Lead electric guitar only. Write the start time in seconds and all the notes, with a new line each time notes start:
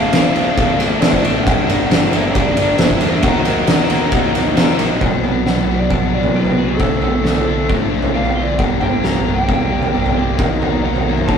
Already playing: F5
1.01 D5
1.24 E5
1.43 F#5
1.89 F#5
2.12 E5
2.32 D5
2.78 E5
3.23 F#5
5.47 F#5
5.78 D5
5.90 F#5
6.14 D5
6.36 B4
6.68 A4
8.15 F5
8.42 D5
8.58 F#5
8.81 G5
9.04 A#5
9.34 G5
10.83 F#5
11.14 E5
11.27 A5